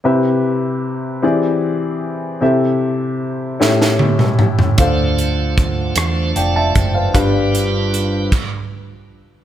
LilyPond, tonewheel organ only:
\new Staff \with { instrumentName = "Tonewheel organ" } { \time 6/8 \key c \major \tempo 4. = 51 << { r2. | r2. | r2 <f'' a''>16 <d'' f''>16 <c'' e''>16 <b' d''>16~ | <b' d''>16 r2 r8. | } \\ { r2. | r2. | <a d' e' f' c''>2. | <g d' f' b'>4. r4. | } >> }